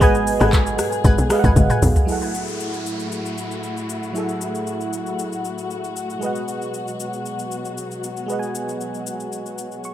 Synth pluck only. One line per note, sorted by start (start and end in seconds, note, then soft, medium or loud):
0.01 0.12 B4 loud
0.01 0.12 F#5 medium
0.01 0.12 G#5 loud
0.40 0.50 B4 medium
0.40 0.51 F#5 medium
0.40 0.51 G#5 medium
1.04 1.41 B4 loud
1.04 1.41 F#5 medium
1.04 1.41 G#5 loud
1.44 1.54 B4 medium
1.44 1.54 F#5 medium
1.44 1.54 G#5 medium
1.70 1.80 B4 medium
1.70 1.80 F#5 medium
1.70 1.80 G#5 medium